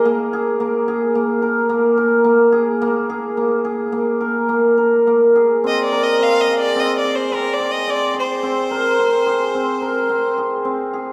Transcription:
<<
  \new Staff \with { instrumentName = "Violin" } { \time 5/4 \key aes \lydian \tempo 4 = 108 r1 r4 | r1 r4 | \tuplet 3/2 { ees''8 d''8 ees''8 f''8 ees''8 d''8 ees''8 d''8 c''8 bes'8 d''8 ees''8 } d''8 c''8~ | c''2.~ c''8 r4. | }
  \new Staff \with { instrumentName = "Hammered dulcimer" } { \time 5/4 \key aes \lydian bes8 aes'8 bes8 aes'8 bes8 bes'8 bes8 bes'8 bes8 aes'8 | bes8 aes'8 bes8 aes'8 bes8 bes'8 bes8 bes'8 bes8 aes'8 | c'8 bes'8 c'8 aes'8 c'8 aes'8 c'8 aes'8 c'8 aes'8 | c'8 bes'8 c'8 aes'8 c'8 bes'8 c'8 aes'8 c'8 aes'8 | }
>>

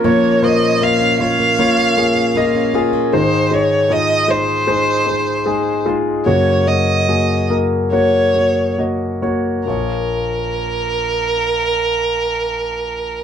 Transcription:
<<
  \new Staff \with { instrumentName = "Violin" } { \time 4/4 \key bes \minor \tempo 4 = 74 des''8 ees''8 f''8 f''2 r8 | c''8 des''8 ees''8 c''2 r8 | des''8 ees''4 r8 des''4 r4 | bes'1 | }
  \new Staff \with { instrumentName = "Grand piano" } { \time 4/4 \key bes \minor <bes f' des''>8 <bes f' c''>8 <bes f' ees''>8 <bes f' des''>8 <bes f' des''>8 <bes f' aes'>8 <bes f' ees''>8 <bes f' aes'>8 | <aes ees' c''>8 <aes ees' ees''>8 <aes ees' f'>8 <aes ees' c''>8 <aes ees' c''>8 <aes ees' c''>8 <aes ees' aes'>8 <aes ees' f'>8 | <bes ges' des''>8 <bes ges' des''>8 <bes ges' aes'>8 <bes ges' bes'>8 <bes ges' des''>8 <bes ges' des''>8 <bes ges' ees''>8 <bes ges' des''>8 | <bes f' des''>1 | }
  \new Staff \with { instrumentName = "Grand piano" } { \clef bass \time 4/4 \key bes \minor <bes, f>1 | <aes, ees>1 | <ges, des>1 | bes,,1 | }
  \new Staff \with { instrumentName = "Steel-string acoustic guitar" } { \time 4/4 \key bes \minor <bes, bes des' f'>16 bes16 des'16 bes16 f'16 des'16 f'16 bes16 bes,16 bes16 des'16 bes16 f'16 des'16 f'16 bes16 | r1 | r1 | r1 | }
>>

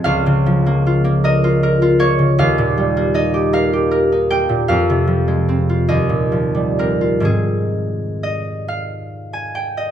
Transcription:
<<
  \new Staff \with { instrumentName = "Harp" } { \time 6/8 \key aes \major \tempo 4. = 50 f''4. ees''4 des''8 | f''4 ees''8 f''4 g''8 | f''4. ees''4 bes'8 | aes'4 ees''8 f''8. aes''16 g''16 ees''16 | }
  \new Staff \with { instrumentName = "Harp" } { \time 6/8 \key aes \major <des, f f'>16 des16 f16 bes16 f'16 bes16 bes'16 f'16 bes'16 f'16 bes16 des16 | ees,16 bes,16 g16 bes16 ees'16 g'16 bes'16 g'16 bes'16 ees'16 bes16 bes,16 | f,16 c16 f16 aes16 c'16 f'16 ees,16 bes,16 f16 g16 c'16 f'16 | <aes, ees aes c'>2. | }
>>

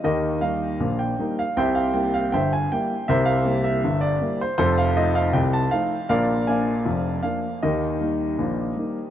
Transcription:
<<
  \new Staff \with { instrumentName = "Grand piano" } { \time 2/4 \key ees \major \tempo 4 = 79 <g' bes' ees''>8 f''8. g''8 f''16 | <c'' e'' g''>16 f''16 g''16 f''16 <c'' e'' g''>16 aes''16 g''8 | <bes' c'' e''>16 f''8 e''8 d''8 c''16 | <f' a' c''>16 f''16 ees''16 f''16 g''16 a''16 f''8 |
<bes' d'' f''>8 <d'' f'' aes''>4 f''8 | <g' bes' ees''>2 | }
  \new Staff \with { instrumentName = "Grand piano" } { \clef bass \time 2/4 \key ees \major <ees, ees>8 <g bes ees'>8 <bes,, bes,>8 <g bes ees'>8 | <c, c>8 <g bes e'>8 <g,, g,>8 <g bes e'>8 | <c, c>8 <g bes e'>8 <g,, g,>8 <g bes e'>8 | <f,, f,>8 <f a ees'>8 <c, c>8 <f a ees'>8 |
<bes,, bes,>8 <f bes d'>8 <f,, f,>8 <f bes d'>8 | <ees, ees>8 <g bes ees'>8 <bes,, bes,>8 <g bes ees'>8 | }
>>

